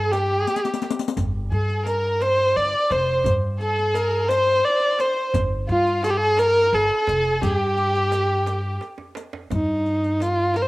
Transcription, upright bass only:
Already playing: G2
1.17 G1
1.52 G2
2.56 G1
2.91 F1
3.26 G2
5.34 G1
5.69 G2
6.73 G1
7.07 F1
7.42 G2
9.51 G2

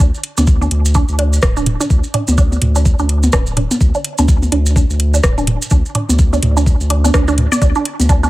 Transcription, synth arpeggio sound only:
0.38 D4
0.61 D4
0.95 D4
1.19 D4
1.57 D4
1.80 D4
2.14 D4
2.38 D4
2.76 D4
3.00 D4
3.33 D4
3.57 D4
3.95 D4
4.19 D4
4.52 D4
4.76 D4
5.14 D4
5.38 D4
5.71 D4
5.95 D4
6.33 D4
6.57 D4
6.90 D4
7.04 D4
7.14 D4
7.28 D4
7.52 D5
7.62 D4
7.76 D4
8.09 D4
8.23 D4

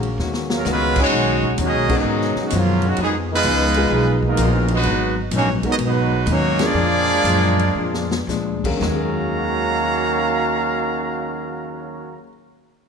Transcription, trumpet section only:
0.54 F#3 C#4 F4 A#4
0.70 G#3 C#4 F4 B4
1.00 G#3 D#4 F#4 C#5
1.65 C#4 F#4 G#4 D#5
1.96 F#3 C#4 D#4 G#4
2.44 G#3 C#4 F#4
2.57 F#3 A#3 C#4 F4
2.87 G#3 C#4 F#4
3.01 B3 D#4 G#4
3.33 G#3 D#4 F4 B4
4.26 G#3 D#4 F4 A#4
4.73 G#3 D#4 F#4 B4
5.35 A#3 D#4 F#4 C#5
5.69 B3 F#4 G#4 D#5
5.85 G#3 D#4 F#4 B4
6.30 A#3 D#4 F#4 C#5
6.62 A#3 F4 G#4 D5
8.85 F#4 C#5 F5 A#5

